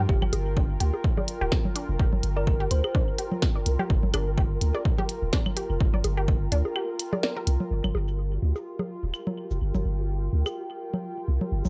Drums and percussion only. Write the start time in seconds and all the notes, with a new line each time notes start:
0.09 kick
0.22 low conga, claves
0.33 closed hi-hat, low bongo
0.57 kick
0.80 closed hi-hat
0.94 low bongo
1.04 kick
1.17 low bongo, low conga
1.28 closed hi-hat
1.52 kick, snare, claves
1.65 low conga
1.76 closed hi-hat
1.99 kick
2.13 low conga
2.23 closed hi-hat
2.47 kick
2.71 closed hi-hat
2.84 low bongo, claves
2.95 kick
3.18 closed hi-hat
3.32 low conga
3.42 kick, snare
3.66 closed hi-hat
3.79 low conga
3.90 kick
4.03 low conga
4.14 closed hi-hat, low bongo, claves
4.38 kick
4.61 closed hi-hat
4.75 low bongo
4.85 kick
4.98 low bongo, low conga
5.09 closed hi-hat
5.33 kick, snare
5.46 low conga, claves
5.57 closed hi-hat
5.80 kick
5.94 low conga
6.04 closed hi-hat, low bongo
6.28 kick
6.52 closed hi-hat
6.65 low bongo
6.76 claves
6.99 closed hi-hat
7.13 low bongo, low conga
7.23 snare
7.47 closed hi-hat
7.60 low conga
7.84 low conga, cabasa, claves
7.95 low bongo
8.08 cabasa
8.56 low bongo, cabasa
8.79 low bongo, low conga
9.14 cabasa, claves
9.27 low conga
9.51 cabasa
9.75 low conga, cabasa
10.46 low bongo, cabasa, claves
10.94 low conga
11.41 low conga
11.65 low conga, cabasa